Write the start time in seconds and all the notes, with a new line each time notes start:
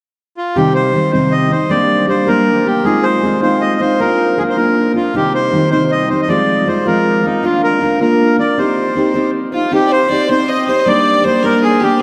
0.37 F4
0.55 C3 D#3 G3 C4 D#4 G4
0.74 C5
0.93 D#3 G3 C4 D#4
1.12 C3 D#3 G3 C4 D#4 C5
1.31 D#5
1.50 G3 C4 D#4 C5
1.69 G3 A#3 D4 G4 D5
2.07 G3 A#3 D4 G4 C5
2.27 G3 A#3 D4 G4 A#4
2.65 A#3 D4 G4
2.84 G#3 C4 D#4 F4 G#4
3.03 C5
3.23 G#3 C4 D#4 F4
3.42 G#3 C4 D#4 F4 C5
3.61 D#5
3.80 C4 D#4 F4 C5
4.00 A#3 D4 F4 A#4
4.38 A#3 D4 F4 G#4 A#4
4.50 C5
4.57 A#3 D4 F4 A#4
4.94 D4 F4 A#4
5.14 C3 D#3 G3 C4 D#4 G4
5.34 C5
5.52 D#3 G3 C4 D#4
5.71 C3 D#3 G3 C4 D#4 C5
5.92 D#5
6.09 G3 C4 D#4 C5
6.22 D#5
6.28 F3 G#3 C4 F4 D5
6.66 F3 G#3 C4 F4 C5
6.86 F3 G#3 C4 F4 A#4
7.23 G#3 C4 D#4 F4
7.43 A#3 D4 F4 A#4
7.63 A#4
7.81 A#3 D4 F4 A#4
7.99 A#3 D4 F4 A#4
8.37 D4 F4 A#4 D5
8.58 C4 D#4 G4 C5
8.95 C4 D#4 G4 C5
9.14 C4 D#4 G4 C5
9.52 D#4 F4 G4 C5
9.71 C4 D#4 G4 C5
9.87 D5
9.92 C5
10.09 C4 D#4 G4 C5 D5
10.29 C4 D#4 G4 C5
10.48 D#5
10.67 D#4 G4 C5
10.79 D#5
10.85 G3 A#3 D4 G4 D5
11.24 G3 A#3 D4 G4 C5
11.43 G3 A#3 D4 G4 A#4
11.62 G#4
11.80 D4 G4
11.85 A#3